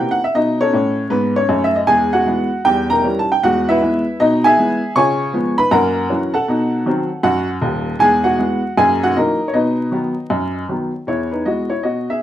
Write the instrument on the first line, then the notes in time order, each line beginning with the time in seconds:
upright piano
Already playing: E3 A#3 C4
0.11 F#5
0.24 E5
0.35 B2 D#4 D#5
0.61 C#4 A4 C#5
0.73 A2 C#4
1.10 G#2 B3 B4
1.36 C#4 C#5
1.49 F#2 A3
1.64 E5
1.76 D#5
1.87 E2 G#3 G#4 G#5
2.13 F#4 F#5
2.26 E3 G#3 B3
2.65 E2 G3 G4 G5
2.90 A#4 A#5
3.04 E3 G3 C#4
3.19 A5
3.32 G5
3.43 E2 G#3 F#4 F#5
3.69 E4 B4 E5
3.82 E3 G#3 B3
4.20 B2 D#4 D#5
4.44 G#4 E5 G#5
4.58 E3 G#3 B3
4.96 C#3 F4 C#5 G#5 C#6
5.33 F3 G#3 B3
5.58 B4 B5
5.71 F#2 A#3 A#4 F#5 A#5
6.09 E3 F#3 C#4
6.34 A4 F#5 A5
6.48 B2 D#4
6.86 D#3 F#3 C4
7.23 F#2 F#4 F#5
7.61 D#1 D#2
7.99 E2 G#3 G#4 G#5
8.24 F#4 F#5
8.38 E3 G#3 B3
8.78 F#2 A#3 G#4 G#5
9.03 F#4 F#5
9.16 E3 F#3 A#3 D#4 A#4 D#5
9.48 C#5
9.53 B2 D#4 B4 D#5
9.92 D#3 F#3 B3
10.30 F#2
10.69 D#3 F#3 B3
11.07 E2 E4 C#5
11.31 D#4 B4
11.46 E3 G#3 B3 F#4 D#5
11.70 E4 C#5
11.83 B2 F#4 D#5
12.10 G#4 E5